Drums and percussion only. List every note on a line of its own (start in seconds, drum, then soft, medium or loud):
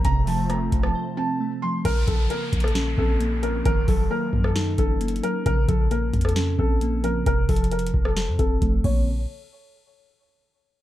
0.05 kick loud
0.05 closed hi-hat medium
0.27 open hi-hat medium
0.50 cross-stick medium
0.50 closed hi-hat medium
0.72 kick medium
0.72 closed hi-hat medium
0.83 cross-stick loud
1.85 kick loud
1.85 closed hi-hat medium
1.85 crash medium
2.08 kick loud
2.08 closed hi-hat medium
2.30 closed hi-hat medium
2.53 kick medium
2.53 closed hi-hat medium
2.60 cross-stick loud
2.60 closed hi-hat medium
2.68 closed hi-hat medium
2.75 snare loud
2.75 closed hi-hat medium
2.98 kick loud
3.20 closed hi-hat medium
3.43 closed hi-hat medium
3.65 kick loud
3.65 closed hi-hat medium
3.88 kick loud
3.88 open hi-hat medium
4.33 kick medium
4.44 cross-stick loud
4.56 snare loud
4.56 closed hi-hat medium
4.78 kick loud
4.78 closed hi-hat medium
5.01 closed hi-hat medium
5.08 closed hi-hat medium
5.16 closed hi-hat medium
5.24 closed hi-hat medium
5.46 kick loud
5.46 closed hi-hat medium
5.68 kick loud
5.68 closed hi-hat medium
5.91 closed hi-hat medium
6.14 kick medium
6.14 closed hi-hat medium
6.21 cross-stick loud
6.21 closed hi-hat medium
6.29 closed hi-hat medium
6.36 snare loud
6.36 closed hi-hat medium
6.59 kick loud
6.81 closed hi-hat medium
7.04 closed hi-hat medium
7.26 kick loud
7.26 closed hi-hat medium
7.49 kick loud
7.49 closed hi-hat soft
7.49 open hi-hat medium
7.56 closed hi-hat medium
7.64 closed hi-hat medium
7.71 closed hi-hat medium
7.79 closed hi-hat medium
7.87 closed hi-hat medium
7.94 kick medium
8.05 cross-stick loud
8.17 snare loud
8.17 closed hi-hat medium
8.39 kick loud
8.39 closed hi-hat medium
8.62 kick medium
8.62 closed hi-hat medium
8.84 kick loud
8.84 crash medium